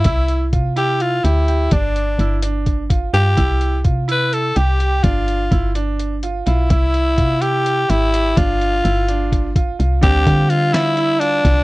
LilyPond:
<<
  \new Staff \with { instrumentName = "Grand piano" } { \time 7/8 \key c \major \tempo 4 = 126 e'4 f'8 e'4 g'8 g'8 | d'4 e'8 d'4 f'8 f'8 | e'4 f'8 e'4 g'8 g'8 | d'4 e'8 d'4 f'8 f'8 |
e'4 f'8 e'4 g'8 g'8 | d'4 e'8 d'4 f'8 f'8 | d'8 f'4 f'8 e'8 f'4 | }
  \new Staff \with { instrumentName = "Tenor saxophone" } { \time 7/8 \key c \major e'4 r8 g'8 f'8 e'4 | d'4. r4. g'8~ | g'4 r8 b'8 a'8 g'4 | f'4. r4. e'8~ |
e'4. g'4 e'4 | f'2~ f'8 r4 | g'4 f'8 e'4 d'4 | }
  \new Staff \with { instrumentName = "Hollow-body jazz guitar" } { \clef bass \time 7/8 \key c \major r2. r8 | r2. r8 | r2. r8 | r2. r8 |
r2. r8 | r2. r8 | <d g c'>2.~ <d g c'>8 | }
  \new Staff \with { instrumentName = "FM bass" } { \clef bass \time 7/8 \key c \major c,4 c4. d,4 | g,,4 g,,2 g,8 | c,4 c4. c,4 | g,,4 g,,2 b,,8 |
c,4 c4. aes,,4 | g,,4 g,,2 c,8 | d,8 d2~ d8 c,8 | }
  \new DrumStaff \with { instrumentName = "Drums" } \drummode { \time 7/8 <hh bd>8 hh8 <hh bd>8 hh8 hh8 hh8 hh8 | <hh bd>8 hh8 hh8 hh8 <hh bd>8 <hh bd>8 hh8 | <hh bd>8 hh8 <hh bd>8 hh8 hh8 hh8 hh8 | <hh bd>8 hh8 <hh bd>8 hh8 hh8 hh8 hh8 |
<hh bd>8 hh8 <hh bd>8 hh8 hh8 hh8 hh8 | <hh bd>8 hh8 hh8 hh8 <hh bd>8 <hh bd>8 hh8 | <hh bd>8 <hh bd>8 hh8 <hh sn>8 hh8 hh8 <hh bd sn>8 | }
>>